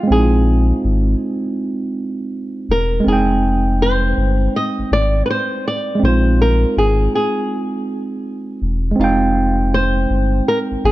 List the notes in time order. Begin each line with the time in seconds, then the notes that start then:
Already playing: F4
0.03 G#3
0.07 A#1 C4
0.12 D#4 G#4
0.16 E4
0.22 F4
0.84 G#1
2.69 E1 A#4
3.00 G#3
3.04 F1 C4
3.08 D#4 G#4
3.13 G5
3.82 C5
4.17 G1
4.56 D#5
4.79 G#1
4.91 G#1 D5
5.26 B4
5.30 C5
5.68 D5
5.95 G#3
6.00 A#1 C4
6.04 D#4 C5
6.08 F4
6.42 A#4
6.77 G#1 G#4
7.15 G#4
8.62 E1
8.91 G#3
8.96 F1 C4
9.00 D#4 F4
9.04 G5
9.74 C5
10.10 G1
10.48 A#4
10.71 G#1
10.84 G#1 G#4